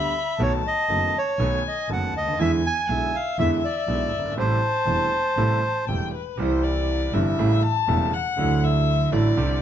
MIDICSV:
0, 0, Header, 1, 5, 480
1, 0, Start_track
1, 0, Key_signature, 0, "minor"
1, 0, Tempo, 498753
1, 385, Time_signature, 4, 2, 24, 8
1, 6151, Key_signature, 0, "major"
1, 9257, End_track
2, 0, Start_track
2, 0, Title_t, "Violin"
2, 0, Program_c, 0, 40
2, 0, Note_on_c, 0, 83, 80
2, 368, Note_off_c, 0, 83, 0
2, 374, Note_on_c, 0, 81, 82
2, 1303, Note_off_c, 0, 81, 0
2, 1341, Note_on_c, 0, 80, 75
2, 1826, Note_on_c, 0, 81, 81
2, 1841, Note_off_c, 0, 80, 0
2, 2307, Note_on_c, 0, 80, 82
2, 2321, Note_off_c, 0, 81, 0
2, 2793, Note_on_c, 0, 76, 75
2, 2808, Note_off_c, 0, 80, 0
2, 4214, Note_on_c, 0, 81, 89
2, 4228, Note_off_c, 0, 76, 0
2, 5652, Note_on_c, 0, 79, 75
2, 5667, Note_off_c, 0, 81, 0
2, 5902, Note_off_c, 0, 79, 0
2, 5912, Note_on_c, 0, 71, 67
2, 6148, Note_on_c, 0, 72, 78
2, 6163, Note_off_c, 0, 71, 0
2, 6388, Note_on_c, 0, 74, 82
2, 6402, Note_off_c, 0, 72, 0
2, 6872, Note_on_c, 0, 76, 83
2, 6886, Note_off_c, 0, 74, 0
2, 7348, Note_on_c, 0, 81, 100
2, 7362, Note_off_c, 0, 76, 0
2, 7830, Note_on_c, 0, 78, 91
2, 7845, Note_off_c, 0, 81, 0
2, 8312, Note_on_c, 0, 76, 86
2, 8326, Note_off_c, 0, 78, 0
2, 8781, Note_on_c, 0, 74, 79
2, 8796, Note_off_c, 0, 76, 0
2, 9257, Note_off_c, 0, 74, 0
2, 9257, End_track
3, 0, Start_track
3, 0, Title_t, "Bandoneon"
3, 0, Program_c, 1, 23
3, 0, Note_on_c, 1, 76, 78
3, 406, Note_off_c, 1, 76, 0
3, 406, Note_on_c, 1, 73, 75
3, 510, Note_off_c, 1, 73, 0
3, 649, Note_on_c, 1, 75, 81
3, 1132, Note_off_c, 1, 75, 0
3, 1134, Note_on_c, 1, 73, 70
3, 1568, Note_off_c, 1, 73, 0
3, 1613, Note_on_c, 1, 75, 71
3, 1822, Note_off_c, 1, 75, 0
3, 1853, Note_on_c, 1, 78, 72
3, 2060, Note_off_c, 1, 78, 0
3, 2091, Note_on_c, 1, 75, 84
3, 2298, Note_off_c, 1, 75, 0
3, 2317, Note_on_c, 1, 76, 90
3, 2421, Note_off_c, 1, 76, 0
3, 2564, Note_on_c, 1, 80, 95
3, 3033, Note_on_c, 1, 77, 83
3, 3044, Note_off_c, 1, 80, 0
3, 3247, Note_off_c, 1, 77, 0
3, 3268, Note_on_c, 1, 76, 95
3, 3373, Note_off_c, 1, 76, 0
3, 3513, Note_on_c, 1, 74, 76
3, 4179, Note_off_c, 1, 74, 0
3, 4222, Note_on_c, 1, 72, 81
3, 5630, Note_off_c, 1, 72, 0
3, 9257, End_track
4, 0, Start_track
4, 0, Title_t, "Grand piano"
4, 0, Program_c, 2, 0
4, 0, Note_on_c, 2, 38, 44
4, 0, Note_on_c, 2, 50, 52
4, 0, Note_on_c, 2, 55, 36
4, 0, Note_on_c, 2, 59, 36
4, 0, Note_on_c, 2, 67, 44
4, 104, Note_off_c, 2, 38, 0
4, 104, Note_off_c, 2, 50, 0
4, 105, Note_off_c, 2, 59, 0
4, 105, Note_off_c, 2, 67, 0
4, 106, Note_off_c, 2, 55, 0
4, 378, Note_on_c, 2, 51, 61
4, 379, Note_on_c, 2, 47, 66
4, 379, Note_on_c, 2, 59, 52
4, 381, Note_on_c, 2, 57, 62
4, 383, Note_on_c, 2, 66, 74
4, 384, Note_on_c, 2, 35, 76
4, 584, Note_off_c, 2, 51, 0
4, 585, Note_off_c, 2, 47, 0
4, 585, Note_off_c, 2, 59, 0
4, 586, Note_off_c, 2, 57, 0
4, 587, Note_off_c, 2, 35, 0
4, 587, Note_off_c, 2, 66, 0
4, 859, Note_on_c, 2, 51, 42
4, 862, Note_on_c, 2, 59, 40
4, 863, Note_on_c, 2, 30, 49
4, 864, Note_on_c, 2, 42, 48
4, 864, Note_on_c, 2, 57, 40
4, 869, Note_on_c, 2, 66, 44
4, 1064, Note_off_c, 2, 51, 0
4, 1065, Note_off_c, 2, 59, 0
4, 1066, Note_off_c, 2, 30, 0
4, 1066, Note_off_c, 2, 57, 0
4, 1067, Note_off_c, 2, 42, 0
4, 1069, Note_off_c, 2, 66, 0
4, 1339, Note_on_c, 2, 51, 58
4, 1343, Note_on_c, 2, 57, 58
4, 1344, Note_on_c, 2, 35, 75
4, 1344, Note_on_c, 2, 47, 67
4, 1346, Note_on_c, 2, 59, 60
4, 1348, Note_on_c, 2, 66, 67
4, 1545, Note_off_c, 2, 51, 0
4, 1547, Note_off_c, 2, 47, 0
4, 1547, Note_off_c, 2, 57, 0
4, 1548, Note_off_c, 2, 35, 0
4, 1548, Note_off_c, 2, 59, 0
4, 1549, Note_off_c, 2, 66, 0
4, 1821, Note_on_c, 2, 51, 45
4, 1822, Note_on_c, 2, 59, 36
4, 1823, Note_on_c, 2, 57, 40
4, 1824, Note_on_c, 2, 42, 52
4, 1825, Note_on_c, 2, 30, 52
4, 1830, Note_on_c, 2, 66, 45
4, 2021, Note_off_c, 2, 51, 0
4, 2022, Note_off_c, 2, 57, 0
4, 2022, Note_off_c, 2, 59, 0
4, 2023, Note_off_c, 2, 30, 0
4, 2023, Note_off_c, 2, 42, 0
4, 2026, Note_off_c, 2, 66, 0
4, 2129, Note_on_c, 2, 37, 47
4, 2184, Note_off_c, 2, 37, 0
4, 2187, Note_on_c, 2, 38, 54
4, 2243, Note_off_c, 2, 38, 0
4, 2243, Note_on_c, 2, 39, 62
4, 2301, Note_off_c, 2, 39, 0
4, 2301, Note_on_c, 2, 50, 65
4, 2305, Note_on_c, 2, 56, 63
4, 2305, Note_on_c, 2, 59, 59
4, 2306, Note_on_c, 2, 52, 83
4, 2308, Note_on_c, 2, 40, 70
4, 2310, Note_on_c, 2, 64, 69
4, 2501, Note_off_c, 2, 50, 0
4, 2503, Note_off_c, 2, 52, 0
4, 2503, Note_off_c, 2, 56, 0
4, 2503, Note_off_c, 2, 59, 0
4, 2504, Note_off_c, 2, 40, 0
4, 2505, Note_off_c, 2, 64, 0
4, 2781, Note_on_c, 2, 35, 57
4, 2782, Note_on_c, 2, 50, 44
4, 2782, Note_on_c, 2, 56, 38
4, 2783, Note_on_c, 2, 47, 48
4, 2784, Note_on_c, 2, 59, 44
4, 2786, Note_on_c, 2, 64, 54
4, 2980, Note_off_c, 2, 35, 0
4, 2981, Note_off_c, 2, 47, 0
4, 2981, Note_off_c, 2, 50, 0
4, 2981, Note_off_c, 2, 56, 0
4, 2982, Note_off_c, 2, 59, 0
4, 2983, Note_off_c, 2, 64, 0
4, 3259, Note_on_c, 2, 52, 81
4, 3260, Note_on_c, 2, 50, 68
4, 3264, Note_on_c, 2, 40, 69
4, 3264, Note_on_c, 2, 56, 58
4, 3267, Note_on_c, 2, 59, 54
4, 3269, Note_on_c, 2, 64, 80
4, 3458, Note_off_c, 2, 50, 0
4, 3458, Note_off_c, 2, 52, 0
4, 3460, Note_off_c, 2, 40, 0
4, 3460, Note_off_c, 2, 56, 0
4, 3461, Note_off_c, 2, 59, 0
4, 3463, Note_off_c, 2, 64, 0
4, 3731, Note_on_c, 2, 50, 42
4, 3732, Note_on_c, 2, 35, 52
4, 3734, Note_on_c, 2, 47, 49
4, 3734, Note_on_c, 2, 59, 37
4, 3735, Note_on_c, 2, 56, 37
4, 3738, Note_on_c, 2, 64, 45
4, 3932, Note_off_c, 2, 50, 0
4, 3933, Note_off_c, 2, 35, 0
4, 3933, Note_off_c, 2, 47, 0
4, 3933, Note_off_c, 2, 59, 0
4, 3934, Note_off_c, 2, 56, 0
4, 3936, Note_off_c, 2, 64, 0
4, 4031, Note_on_c, 2, 30, 44
4, 4089, Note_on_c, 2, 31, 50
4, 4090, Note_off_c, 2, 30, 0
4, 4149, Note_off_c, 2, 31, 0
4, 4150, Note_on_c, 2, 32, 57
4, 4209, Note_off_c, 2, 32, 0
4, 4209, Note_on_c, 2, 45, 71
4, 4210, Note_on_c, 2, 48, 59
4, 4210, Note_on_c, 2, 55, 54
4, 4211, Note_on_c, 2, 33, 79
4, 4213, Note_on_c, 2, 57, 60
4, 4214, Note_on_c, 2, 64, 70
4, 4409, Note_off_c, 2, 45, 0
4, 4409, Note_off_c, 2, 48, 0
4, 4409, Note_off_c, 2, 55, 0
4, 4410, Note_off_c, 2, 33, 0
4, 4411, Note_off_c, 2, 57, 0
4, 4411, Note_off_c, 2, 64, 0
4, 4679, Note_on_c, 2, 48, 44
4, 4682, Note_on_c, 2, 28, 49
4, 4682, Note_on_c, 2, 40, 50
4, 4682, Note_on_c, 2, 57, 38
4, 4684, Note_on_c, 2, 55, 38
4, 4684, Note_on_c, 2, 64, 50
4, 4885, Note_off_c, 2, 48, 0
4, 4886, Note_off_c, 2, 28, 0
4, 4886, Note_off_c, 2, 40, 0
4, 4886, Note_off_c, 2, 57, 0
4, 4887, Note_off_c, 2, 55, 0
4, 4887, Note_off_c, 2, 64, 0
4, 5171, Note_on_c, 2, 55, 54
4, 5175, Note_on_c, 2, 48, 67
4, 5176, Note_on_c, 2, 33, 73
4, 5177, Note_on_c, 2, 45, 69
4, 5178, Note_on_c, 2, 64, 64
4, 5179, Note_on_c, 2, 57, 57
4, 5377, Note_off_c, 2, 55, 0
4, 5378, Note_off_c, 2, 48, 0
4, 5379, Note_off_c, 2, 33, 0
4, 5379, Note_off_c, 2, 45, 0
4, 5380, Note_off_c, 2, 57, 0
4, 5380, Note_off_c, 2, 64, 0
4, 5663, Note_on_c, 2, 55, 38
4, 5665, Note_on_c, 2, 48, 44
4, 5666, Note_on_c, 2, 28, 47
4, 5666, Note_on_c, 2, 40, 48
4, 5666, Note_on_c, 2, 57, 36
4, 5673, Note_on_c, 2, 64, 46
4, 5869, Note_off_c, 2, 48, 0
4, 5869, Note_off_c, 2, 55, 0
4, 5870, Note_off_c, 2, 28, 0
4, 5870, Note_off_c, 2, 40, 0
4, 5870, Note_off_c, 2, 57, 0
4, 5874, Note_off_c, 2, 64, 0
4, 6134, Note_on_c, 2, 48, 78
4, 6148, Note_on_c, 2, 52, 62
4, 6154, Note_on_c, 2, 36, 76
4, 6159, Note_on_c, 2, 55, 58
4, 6176, Note_on_c, 2, 64, 72
4, 6839, Note_off_c, 2, 52, 0
4, 6841, Note_off_c, 2, 48, 0
4, 6842, Note_off_c, 2, 36, 0
4, 6844, Note_off_c, 2, 55, 0
4, 6853, Note_off_c, 2, 64, 0
4, 6865, Note_on_c, 2, 48, 64
4, 6868, Note_on_c, 2, 52, 61
4, 6869, Note_on_c, 2, 43, 71
4, 6870, Note_on_c, 2, 31, 70
4, 6872, Note_on_c, 2, 64, 68
4, 6873, Note_on_c, 2, 55, 53
4, 7073, Note_off_c, 2, 48, 0
4, 7074, Note_off_c, 2, 52, 0
4, 7075, Note_off_c, 2, 31, 0
4, 7075, Note_off_c, 2, 43, 0
4, 7076, Note_off_c, 2, 55, 0
4, 7076, Note_off_c, 2, 64, 0
4, 7107, Note_on_c, 2, 49, 72
4, 7109, Note_on_c, 2, 33, 77
4, 7109, Note_on_c, 2, 45, 80
4, 7112, Note_on_c, 2, 55, 62
4, 7114, Note_on_c, 2, 64, 71
4, 7116, Note_on_c, 2, 57, 59
4, 7314, Note_off_c, 2, 49, 0
4, 7315, Note_off_c, 2, 33, 0
4, 7315, Note_off_c, 2, 45, 0
4, 7316, Note_off_c, 2, 55, 0
4, 7317, Note_off_c, 2, 64, 0
4, 7318, Note_off_c, 2, 57, 0
4, 7584, Note_on_c, 2, 49, 66
4, 7584, Note_on_c, 2, 55, 59
4, 7585, Note_on_c, 2, 28, 77
4, 7587, Note_on_c, 2, 57, 60
4, 7588, Note_on_c, 2, 40, 78
4, 7589, Note_on_c, 2, 64, 81
4, 7792, Note_off_c, 2, 49, 0
4, 7792, Note_off_c, 2, 55, 0
4, 7793, Note_off_c, 2, 28, 0
4, 7794, Note_off_c, 2, 40, 0
4, 7794, Note_off_c, 2, 57, 0
4, 7795, Note_off_c, 2, 64, 0
4, 8055, Note_on_c, 2, 50, 72
4, 8069, Note_off_c, 2, 50, 0
4, 8070, Note_on_c, 2, 54, 63
4, 8071, Note_on_c, 2, 38, 76
4, 8076, Note_on_c, 2, 50, 79
4, 8081, Note_on_c, 2, 57, 59
4, 8095, Note_on_c, 2, 64, 73
4, 8746, Note_off_c, 2, 54, 0
4, 8747, Note_off_c, 2, 38, 0
4, 8749, Note_off_c, 2, 50, 0
4, 8752, Note_off_c, 2, 57, 0
4, 8759, Note_off_c, 2, 64, 0
4, 8777, Note_on_c, 2, 54, 54
4, 8778, Note_on_c, 2, 45, 86
4, 8778, Note_on_c, 2, 50, 60
4, 8782, Note_on_c, 2, 33, 73
4, 8784, Note_on_c, 2, 57, 64
4, 8786, Note_on_c, 2, 64, 71
4, 8980, Note_off_c, 2, 45, 0
4, 8980, Note_off_c, 2, 50, 0
4, 8980, Note_off_c, 2, 54, 0
4, 8982, Note_off_c, 2, 33, 0
4, 8983, Note_off_c, 2, 57, 0
4, 8984, Note_off_c, 2, 64, 0
4, 9015, Note_on_c, 2, 60, 59
4, 9017, Note_on_c, 2, 36, 79
4, 9017, Note_on_c, 2, 55, 62
4, 9018, Note_on_c, 2, 50, 69
4, 9020, Note_on_c, 2, 48, 84
4, 9022, Note_on_c, 2, 67, 74
4, 9218, Note_off_c, 2, 60, 0
4, 9219, Note_off_c, 2, 36, 0
4, 9219, Note_off_c, 2, 50, 0
4, 9219, Note_off_c, 2, 55, 0
4, 9220, Note_off_c, 2, 48, 0
4, 9221, Note_off_c, 2, 67, 0
4, 9257, End_track
5, 0, Start_track
5, 0, Title_t, "Double bass"
5, 0, Program_c, 3, 43
5, 0, Note_on_c, 3, 38, 48
5, 100, Note_off_c, 3, 38, 0
5, 376, Note_on_c, 3, 35, 84
5, 583, Note_off_c, 3, 35, 0
5, 860, Note_on_c, 3, 30, 58
5, 1064, Note_off_c, 3, 30, 0
5, 1334, Note_on_c, 3, 35, 83
5, 1542, Note_off_c, 3, 35, 0
5, 1818, Note_on_c, 3, 30, 56
5, 2020, Note_off_c, 3, 30, 0
5, 2052, Note_on_c, 3, 38, 42
5, 2283, Note_off_c, 3, 38, 0
5, 2289, Note_on_c, 3, 40, 78
5, 2495, Note_off_c, 3, 40, 0
5, 2774, Note_on_c, 3, 35, 55
5, 2977, Note_off_c, 3, 35, 0
5, 3255, Note_on_c, 3, 40, 76
5, 3456, Note_off_c, 3, 40, 0
5, 3728, Note_on_c, 3, 35, 58
5, 3930, Note_off_c, 3, 35, 0
5, 3966, Note_on_c, 3, 31, 43
5, 4195, Note_off_c, 3, 31, 0
5, 4201, Note_on_c, 3, 33, 81
5, 4405, Note_off_c, 3, 33, 0
5, 4678, Note_on_c, 3, 28, 54
5, 4884, Note_off_c, 3, 28, 0
5, 5165, Note_on_c, 3, 33, 72
5, 5373, Note_off_c, 3, 33, 0
5, 5659, Note_on_c, 3, 28, 47
5, 5867, Note_off_c, 3, 28, 0
5, 6145, Note_on_c, 3, 36, 89
5, 6837, Note_off_c, 3, 36, 0
5, 6866, Note_on_c, 3, 31, 77
5, 7073, Note_off_c, 3, 31, 0
5, 7107, Note_on_c, 3, 33, 86
5, 7314, Note_off_c, 3, 33, 0
5, 7588, Note_on_c, 3, 28, 80
5, 7794, Note_off_c, 3, 28, 0
5, 8067, Note_on_c, 3, 38, 85
5, 8745, Note_off_c, 3, 38, 0
5, 8778, Note_on_c, 3, 33, 89
5, 8980, Note_off_c, 3, 33, 0
5, 9011, Note_on_c, 3, 36, 81
5, 9216, Note_off_c, 3, 36, 0
5, 9257, End_track
0, 0, End_of_file